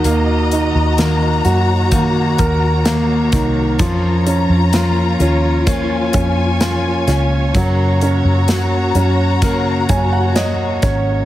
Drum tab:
HH |xxxxxxxx|xxxxxxxx|xxxxxxxx|
SD |--o---oo|--o---oo|--o---oo|
BD |----oo-o|o---oo--|o---oo-o|